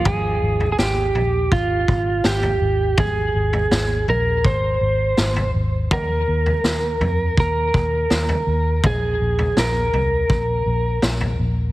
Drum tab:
SD |----o-------o---|----o-------o---|----o-------o---|----o-------o---|
FT |o--o--o------o--|o--o--o------o--|o--o--o------o--|o--o--o------o--|
BD |o-------o-o-----|o-------o-------|o-------o-o-----|o-------o-------|